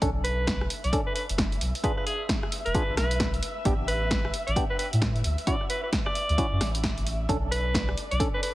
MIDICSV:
0, 0, Header, 1, 6, 480
1, 0, Start_track
1, 0, Key_signature, 2, "minor"
1, 0, Tempo, 454545
1, 20, Time_signature, 4, 2, 24, 8
1, 9018, End_track
2, 0, Start_track
2, 0, Title_t, "String machine"
2, 0, Program_c, 0, 50
2, 18, Note_on_c, 0, 76, 86
2, 7703, Note_on_c, 0, 74, 90
2, 7710, Note_off_c, 0, 76, 0
2, 9018, Note_off_c, 0, 74, 0
2, 9018, End_track
3, 0, Start_track
3, 0, Title_t, "Alto saxophone"
3, 0, Program_c, 1, 65
3, 258, Note_on_c, 1, 71, 95
3, 739, Note_off_c, 1, 71, 0
3, 887, Note_on_c, 1, 74, 85
3, 1021, Note_off_c, 1, 74, 0
3, 1124, Note_on_c, 1, 71, 89
3, 1185, Note_off_c, 1, 71, 0
3, 1216, Note_on_c, 1, 71, 75
3, 1312, Note_off_c, 1, 71, 0
3, 1940, Note_on_c, 1, 71, 86
3, 2034, Note_off_c, 1, 71, 0
3, 2083, Note_on_c, 1, 71, 77
3, 2145, Note_off_c, 1, 71, 0
3, 2178, Note_on_c, 1, 68, 91
3, 2351, Note_off_c, 1, 68, 0
3, 2802, Note_on_c, 1, 71, 91
3, 3119, Note_off_c, 1, 71, 0
3, 3139, Note_on_c, 1, 71, 95
3, 3526, Note_off_c, 1, 71, 0
3, 4098, Note_on_c, 1, 71, 95
3, 4579, Note_off_c, 1, 71, 0
3, 4719, Note_on_c, 1, 74, 84
3, 4857, Note_off_c, 1, 74, 0
3, 4965, Note_on_c, 1, 71, 90
3, 5025, Note_off_c, 1, 71, 0
3, 5055, Note_on_c, 1, 71, 79
3, 5151, Note_off_c, 1, 71, 0
3, 5776, Note_on_c, 1, 74, 95
3, 5950, Note_off_c, 1, 74, 0
3, 6016, Note_on_c, 1, 71, 86
3, 6112, Note_off_c, 1, 71, 0
3, 6162, Note_on_c, 1, 71, 74
3, 6224, Note_off_c, 1, 71, 0
3, 6401, Note_on_c, 1, 74, 101
3, 7065, Note_off_c, 1, 74, 0
3, 7936, Note_on_c, 1, 71, 94
3, 8418, Note_off_c, 1, 71, 0
3, 8567, Note_on_c, 1, 74, 88
3, 8701, Note_off_c, 1, 74, 0
3, 8808, Note_on_c, 1, 71, 88
3, 8867, Note_off_c, 1, 71, 0
3, 8902, Note_on_c, 1, 71, 76
3, 8995, Note_off_c, 1, 71, 0
3, 9018, End_track
4, 0, Start_track
4, 0, Title_t, "Synth stab"
4, 0, Program_c, 2, 62
4, 20, Note_on_c, 2, 61, 102
4, 20, Note_on_c, 2, 62, 89
4, 20, Note_on_c, 2, 69, 112
4, 105, Note_off_c, 2, 61, 0
4, 105, Note_off_c, 2, 62, 0
4, 105, Note_off_c, 2, 69, 0
4, 981, Note_on_c, 2, 62, 85
4, 981, Note_on_c, 2, 69, 99
4, 982, Note_on_c, 2, 61, 88
4, 1066, Note_off_c, 2, 61, 0
4, 1066, Note_off_c, 2, 62, 0
4, 1066, Note_off_c, 2, 69, 0
4, 1942, Note_on_c, 2, 65, 96
4, 1943, Note_on_c, 2, 62, 103
4, 1943, Note_on_c, 2, 68, 110
4, 2026, Note_off_c, 2, 62, 0
4, 2026, Note_off_c, 2, 65, 0
4, 2026, Note_off_c, 2, 68, 0
4, 2901, Note_on_c, 2, 65, 82
4, 2902, Note_on_c, 2, 68, 95
4, 2903, Note_on_c, 2, 62, 91
4, 2986, Note_off_c, 2, 62, 0
4, 2986, Note_off_c, 2, 65, 0
4, 2986, Note_off_c, 2, 68, 0
4, 3861, Note_on_c, 2, 59, 99
4, 3861, Note_on_c, 2, 62, 96
4, 3861, Note_on_c, 2, 67, 112
4, 3946, Note_off_c, 2, 59, 0
4, 3946, Note_off_c, 2, 62, 0
4, 3946, Note_off_c, 2, 67, 0
4, 4818, Note_on_c, 2, 62, 82
4, 4818, Note_on_c, 2, 67, 100
4, 4819, Note_on_c, 2, 59, 87
4, 4904, Note_off_c, 2, 59, 0
4, 4904, Note_off_c, 2, 62, 0
4, 4904, Note_off_c, 2, 67, 0
4, 5779, Note_on_c, 2, 61, 103
4, 5779, Note_on_c, 2, 64, 94
4, 5779, Note_on_c, 2, 66, 109
4, 5864, Note_off_c, 2, 64, 0
4, 5864, Note_off_c, 2, 66, 0
4, 5865, Note_off_c, 2, 61, 0
4, 6738, Note_on_c, 2, 61, 91
4, 6739, Note_on_c, 2, 64, 84
4, 6739, Note_on_c, 2, 66, 101
4, 6824, Note_off_c, 2, 61, 0
4, 6824, Note_off_c, 2, 64, 0
4, 6825, Note_off_c, 2, 66, 0
4, 7700, Note_on_c, 2, 61, 104
4, 7700, Note_on_c, 2, 62, 91
4, 7700, Note_on_c, 2, 69, 110
4, 7785, Note_off_c, 2, 61, 0
4, 7785, Note_off_c, 2, 62, 0
4, 7785, Note_off_c, 2, 69, 0
4, 8659, Note_on_c, 2, 62, 83
4, 8660, Note_on_c, 2, 61, 93
4, 8660, Note_on_c, 2, 69, 98
4, 8745, Note_off_c, 2, 61, 0
4, 8745, Note_off_c, 2, 62, 0
4, 8745, Note_off_c, 2, 69, 0
4, 9018, End_track
5, 0, Start_track
5, 0, Title_t, "Sub bass"
5, 0, Program_c, 3, 38
5, 19, Note_on_c, 3, 35, 100
5, 710, Note_off_c, 3, 35, 0
5, 886, Note_on_c, 3, 35, 88
5, 962, Note_off_c, 3, 35, 0
5, 1366, Note_on_c, 3, 30, 95
5, 1671, Note_off_c, 3, 30, 0
5, 1702, Note_on_c, 3, 35, 88
5, 1819, Note_off_c, 3, 35, 0
5, 2808, Note_on_c, 3, 28, 88
5, 2883, Note_off_c, 3, 28, 0
5, 3048, Note_on_c, 3, 32, 97
5, 3123, Note_off_c, 3, 32, 0
5, 3139, Note_on_c, 3, 35, 97
5, 3591, Note_off_c, 3, 35, 0
5, 3857, Note_on_c, 3, 33, 101
5, 4550, Note_off_c, 3, 33, 0
5, 4726, Note_on_c, 3, 33, 85
5, 4802, Note_off_c, 3, 33, 0
5, 5205, Note_on_c, 3, 45, 95
5, 5511, Note_off_c, 3, 45, 0
5, 5537, Note_on_c, 3, 38, 88
5, 5657, Note_off_c, 3, 38, 0
5, 6645, Note_on_c, 3, 38, 87
5, 6721, Note_off_c, 3, 38, 0
5, 6884, Note_on_c, 3, 42, 96
5, 6961, Note_off_c, 3, 42, 0
5, 6980, Note_on_c, 3, 33, 98
5, 7671, Note_off_c, 3, 33, 0
5, 7697, Note_on_c, 3, 35, 96
5, 8390, Note_off_c, 3, 35, 0
5, 8568, Note_on_c, 3, 35, 84
5, 8643, Note_off_c, 3, 35, 0
5, 9018, End_track
6, 0, Start_track
6, 0, Title_t, "Drums"
6, 18, Note_on_c, 9, 36, 116
6, 20, Note_on_c, 9, 42, 68
6, 124, Note_off_c, 9, 36, 0
6, 126, Note_off_c, 9, 42, 0
6, 260, Note_on_c, 9, 46, 111
6, 366, Note_off_c, 9, 46, 0
6, 499, Note_on_c, 9, 36, 116
6, 501, Note_on_c, 9, 38, 120
6, 501, Note_on_c, 9, 42, 67
6, 604, Note_off_c, 9, 36, 0
6, 607, Note_off_c, 9, 38, 0
6, 607, Note_off_c, 9, 42, 0
6, 648, Note_on_c, 9, 37, 68
6, 742, Note_on_c, 9, 46, 111
6, 754, Note_off_c, 9, 37, 0
6, 848, Note_off_c, 9, 46, 0
6, 888, Note_on_c, 9, 42, 36
6, 979, Note_on_c, 9, 36, 109
6, 981, Note_off_c, 9, 42, 0
6, 981, Note_on_c, 9, 42, 66
6, 1085, Note_off_c, 9, 36, 0
6, 1087, Note_off_c, 9, 42, 0
6, 1221, Note_on_c, 9, 46, 112
6, 1326, Note_off_c, 9, 46, 0
6, 1368, Note_on_c, 9, 42, 68
6, 1459, Note_on_c, 9, 36, 122
6, 1462, Note_off_c, 9, 42, 0
6, 1462, Note_on_c, 9, 38, 123
6, 1462, Note_on_c, 9, 42, 68
6, 1565, Note_off_c, 9, 36, 0
6, 1568, Note_off_c, 9, 38, 0
6, 1568, Note_off_c, 9, 42, 0
6, 1609, Note_on_c, 9, 42, 37
6, 1703, Note_on_c, 9, 46, 108
6, 1714, Note_off_c, 9, 42, 0
6, 1809, Note_off_c, 9, 46, 0
6, 1849, Note_on_c, 9, 46, 63
6, 1939, Note_on_c, 9, 36, 122
6, 1943, Note_on_c, 9, 42, 65
6, 1955, Note_off_c, 9, 46, 0
6, 2045, Note_off_c, 9, 36, 0
6, 2048, Note_off_c, 9, 42, 0
6, 2089, Note_on_c, 9, 37, 33
6, 2182, Note_on_c, 9, 46, 108
6, 2195, Note_off_c, 9, 37, 0
6, 2288, Note_off_c, 9, 46, 0
6, 2419, Note_on_c, 9, 36, 120
6, 2422, Note_on_c, 9, 38, 124
6, 2422, Note_on_c, 9, 42, 66
6, 2524, Note_off_c, 9, 36, 0
6, 2527, Note_off_c, 9, 38, 0
6, 2527, Note_off_c, 9, 42, 0
6, 2568, Note_on_c, 9, 37, 73
6, 2662, Note_on_c, 9, 46, 108
6, 2674, Note_off_c, 9, 37, 0
6, 2768, Note_off_c, 9, 46, 0
6, 2807, Note_on_c, 9, 42, 35
6, 2898, Note_on_c, 9, 36, 118
6, 2900, Note_off_c, 9, 42, 0
6, 2900, Note_on_c, 9, 42, 63
6, 3004, Note_off_c, 9, 36, 0
6, 3006, Note_off_c, 9, 42, 0
6, 3140, Note_on_c, 9, 37, 71
6, 3140, Note_on_c, 9, 38, 67
6, 3140, Note_on_c, 9, 46, 109
6, 3246, Note_off_c, 9, 37, 0
6, 3246, Note_off_c, 9, 38, 0
6, 3246, Note_off_c, 9, 46, 0
6, 3285, Note_on_c, 9, 42, 63
6, 3378, Note_on_c, 9, 36, 127
6, 3379, Note_off_c, 9, 42, 0
6, 3379, Note_on_c, 9, 38, 124
6, 3379, Note_on_c, 9, 42, 65
6, 3484, Note_off_c, 9, 36, 0
6, 3484, Note_off_c, 9, 38, 0
6, 3484, Note_off_c, 9, 42, 0
6, 3525, Note_on_c, 9, 42, 35
6, 3618, Note_on_c, 9, 46, 111
6, 3630, Note_off_c, 9, 42, 0
6, 3723, Note_off_c, 9, 46, 0
6, 3857, Note_on_c, 9, 36, 127
6, 3858, Note_on_c, 9, 42, 63
6, 3963, Note_off_c, 9, 36, 0
6, 3963, Note_off_c, 9, 42, 0
6, 4099, Note_on_c, 9, 46, 103
6, 4204, Note_off_c, 9, 46, 0
6, 4337, Note_on_c, 9, 36, 123
6, 4340, Note_on_c, 9, 38, 127
6, 4340, Note_on_c, 9, 42, 64
6, 4443, Note_off_c, 9, 36, 0
6, 4446, Note_off_c, 9, 38, 0
6, 4446, Note_off_c, 9, 42, 0
6, 4486, Note_on_c, 9, 37, 70
6, 4580, Note_on_c, 9, 46, 107
6, 4592, Note_off_c, 9, 37, 0
6, 4685, Note_off_c, 9, 46, 0
6, 4726, Note_on_c, 9, 42, 35
6, 4817, Note_on_c, 9, 36, 118
6, 4820, Note_off_c, 9, 42, 0
6, 4820, Note_on_c, 9, 42, 62
6, 4922, Note_off_c, 9, 36, 0
6, 4926, Note_off_c, 9, 42, 0
6, 5060, Note_on_c, 9, 46, 109
6, 5165, Note_off_c, 9, 46, 0
6, 5206, Note_on_c, 9, 42, 64
6, 5297, Note_on_c, 9, 36, 125
6, 5298, Note_off_c, 9, 42, 0
6, 5298, Note_on_c, 9, 38, 127
6, 5298, Note_on_c, 9, 42, 65
6, 5402, Note_off_c, 9, 36, 0
6, 5404, Note_off_c, 9, 38, 0
6, 5404, Note_off_c, 9, 42, 0
6, 5445, Note_on_c, 9, 42, 35
6, 5537, Note_on_c, 9, 46, 106
6, 5551, Note_off_c, 9, 42, 0
6, 5642, Note_off_c, 9, 46, 0
6, 5684, Note_on_c, 9, 46, 59
6, 5777, Note_on_c, 9, 36, 119
6, 5777, Note_on_c, 9, 42, 68
6, 5790, Note_off_c, 9, 46, 0
6, 5882, Note_off_c, 9, 36, 0
6, 5883, Note_off_c, 9, 42, 0
6, 5924, Note_on_c, 9, 37, 31
6, 6017, Note_on_c, 9, 46, 100
6, 6029, Note_off_c, 9, 37, 0
6, 6122, Note_off_c, 9, 46, 0
6, 6257, Note_on_c, 9, 36, 125
6, 6259, Note_on_c, 9, 38, 126
6, 6259, Note_on_c, 9, 42, 65
6, 6363, Note_off_c, 9, 36, 0
6, 6364, Note_off_c, 9, 38, 0
6, 6364, Note_off_c, 9, 42, 0
6, 6404, Note_on_c, 9, 37, 69
6, 6498, Note_on_c, 9, 46, 100
6, 6509, Note_off_c, 9, 37, 0
6, 6604, Note_off_c, 9, 46, 0
6, 6645, Note_on_c, 9, 42, 36
6, 6737, Note_on_c, 9, 36, 121
6, 6739, Note_off_c, 9, 42, 0
6, 6739, Note_on_c, 9, 42, 64
6, 6843, Note_off_c, 9, 36, 0
6, 6845, Note_off_c, 9, 42, 0
6, 6979, Note_on_c, 9, 37, 67
6, 6979, Note_on_c, 9, 38, 66
6, 6979, Note_on_c, 9, 46, 102
6, 7084, Note_off_c, 9, 37, 0
6, 7084, Note_off_c, 9, 38, 0
6, 7084, Note_off_c, 9, 46, 0
6, 7126, Note_on_c, 9, 42, 64
6, 7218, Note_on_c, 9, 36, 127
6, 7219, Note_off_c, 9, 42, 0
6, 7219, Note_on_c, 9, 38, 124
6, 7219, Note_on_c, 9, 42, 63
6, 7323, Note_off_c, 9, 36, 0
6, 7325, Note_off_c, 9, 38, 0
6, 7325, Note_off_c, 9, 42, 0
6, 7367, Note_on_c, 9, 42, 35
6, 7461, Note_on_c, 9, 46, 105
6, 7473, Note_off_c, 9, 42, 0
6, 7567, Note_off_c, 9, 46, 0
6, 7698, Note_on_c, 9, 36, 118
6, 7702, Note_on_c, 9, 42, 66
6, 7803, Note_off_c, 9, 36, 0
6, 7808, Note_off_c, 9, 42, 0
6, 7942, Note_on_c, 9, 46, 102
6, 8047, Note_off_c, 9, 46, 0
6, 8178, Note_on_c, 9, 36, 115
6, 8183, Note_on_c, 9, 38, 123
6, 8183, Note_on_c, 9, 42, 69
6, 8284, Note_off_c, 9, 36, 0
6, 8289, Note_off_c, 9, 38, 0
6, 8289, Note_off_c, 9, 42, 0
6, 8329, Note_on_c, 9, 37, 66
6, 8422, Note_on_c, 9, 46, 100
6, 8434, Note_off_c, 9, 37, 0
6, 8528, Note_off_c, 9, 46, 0
6, 8569, Note_on_c, 9, 42, 37
6, 8658, Note_on_c, 9, 36, 118
6, 8661, Note_off_c, 9, 42, 0
6, 8661, Note_on_c, 9, 42, 65
6, 8764, Note_off_c, 9, 36, 0
6, 8767, Note_off_c, 9, 42, 0
6, 8901, Note_on_c, 9, 46, 102
6, 9007, Note_off_c, 9, 46, 0
6, 9018, End_track
0, 0, End_of_file